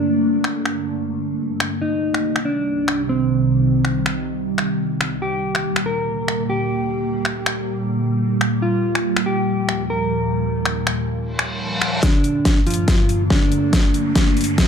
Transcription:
Already playing: G2 D3 A3 A#3 D4
0.44 finger snap
0.66 finger snap
1.60 finger snap
1.82 C2 C3 D#3 G3 D#4
2.14 finger snap
2.36 finger snap
2.45 D4
2.88 finger snap
3.09 C4
3.85 finger snap
4.06 finger snap
4.58 finger snap
5.01 finger snap
5.22 D2 A#2 A#3 G4
5.55 finger snap
5.76 finger snap
5.86 A#4
6.28 finger snap
6.50 G4
7.25 finger snap
7.46 finger snap
8.41 finger snap
8.62 D#2 F3 F4
8.95 finger snap
9.17 finger snap
9.26 G4
9.69 finger snap
9.90 A#4
10.65 finger snap
10.87 finger snap
11.18 reverse cymbal
11.39 finger snap
11.82 finger snap
12.03 G2 D3 A3 A#3 D4, kick, snare, closed hi-hat, riser
12.24 closed hi-hat
12.45 kick, snare, closed hi-hat
12.67 F3 F4, closed hi-hat
12.70 closed hi-hat
12.74 closed hi-hat
12.88 kick, snare, closed hi-hat
13.09 closed hi-hat
13.30 D3 D4, kick, snare
13.52 closed hi-hat
13.73 kick, snare, closed hi-hat
13.94 closed hi-hat
14.16 kick, snare, closed hi-hat
14.37 closed hi-hat
14.41 closed hi-hat
14.44 closed hi-hat
14.58 kick, snare, closed hi-hat

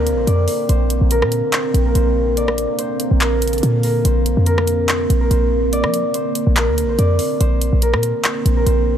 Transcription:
Already playing: D2 D3 A#3 C4 A#4 C5 D5
0.07 closed hi-hat
0.12 A#1
0.17 C5
0.27 F2 D5, closed hi-hat
0.48 open hi-hat
0.69 A#1 A#3 C5, closed hi-hat
0.90 closed hi-hat
1.01 A#1
1.11 A#4, closed hi-hat
1.22 A#2, cross-stick
1.32 closed hi-hat
1.52 C5, clap, closed hi-hat
1.74 A#1, closed hi-hat
1.86 A#4
1.95 A#1 C5, closed hi-hat
2.37 D5, closed hi-hat
2.48 cross-stick
2.58 closed hi-hat
2.79 C5, closed hi-hat
3.00 closed hi-hat
3.11 A#1
3.20 A#4, clap, closed hi-hat
3.42 closed hi-hat
3.48 closed hi-hat
3.53 A4, closed hi-hat
3.58 closed hi-hat
3.63 A#2, closed hi-hat
3.83 A#4, open hi-hat
4.05 A#1 C5, closed hi-hat
4.26 closed hi-hat
4.37 F2
4.46 A#4, closed hi-hat
4.58 cross-stick
4.67 closed hi-hat
4.88 C5, clap, closed hi-hat
5.10 A#1, closed hi-hat
5.21 A#4
5.31 A#1 C5, closed hi-hat
5.73 D5, closed hi-hat
5.84 F3, cross-stick
5.94 closed hi-hat
6.14 C5, closed hi-hat
6.35 closed hi-hat
6.47 A#1
6.56 A#4, clap, closed hi-hat
6.68 D2
6.78 closed hi-hat
6.83 A#1
6.89 C5
6.99 F2 D5, closed hi-hat
7.19 open hi-hat
7.40 A#1 D3 A#3 C4 C5, closed hi-hat
7.61 closed hi-hat
7.73 A#1
7.82 A#4, closed hi-hat
7.94 A#2, cross-stick
8.03 closed hi-hat
8.24 C5, clap, closed hi-hat
8.45 A#1, closed hi-hat
8.57 A#4
8.66 A#1 C5, closed hi-hat

